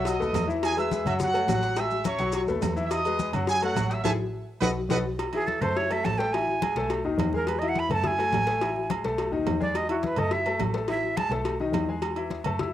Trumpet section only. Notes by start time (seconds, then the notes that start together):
0.08 D#5 D#6
0.65 G#4 G#5
0.78 E5 E6
1.08 E5 E6
1.23 F#4 F#5
1.51 F#4 F#5
1.79 E5 E6
2.07 C#5 C#6
2.36 C#5 C#6
2.85 E5
2.92 D#5 D#6
3.50 G#4 G#5
3.64 F#4 F#5
3.92 E5 E6
4.04 E5 G#5 A5
4.61 B4 D#5 F#5
4.91 B4 D#5 F#5